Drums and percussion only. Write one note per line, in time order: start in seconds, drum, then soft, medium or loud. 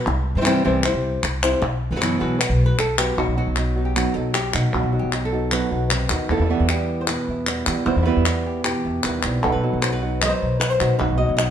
0.06 clap soft
0.45 clap medium
0.84 clap medium
1.23 clap medium
1.43 clap medium
1.62 clap soft
2.02 clap medium
2.41 clap medium
2.79 clap medium
2.99 clap medium
3.19 clap soft
3.56 clap medium
3.96 clap medium
4.35 clap medium
4.54 clap medium
4.73 clap soft
5.13 clap medium
5.52 clap medium
5.91 clap medium
6.10 clap medium
6.69 clap medium
7.08 clap medium
7.47 clap medium
7.67 clap medium
7.86 clap soft
8.26 clap medium
8.64 clap medium
9.04 clap medium
9.23 clap medium
9.43 clap soft
9.82 clap medium
10.22 clap medium
10.61 clap medium
10.81 clap medium
11.00 clap soft
11.38 clap medium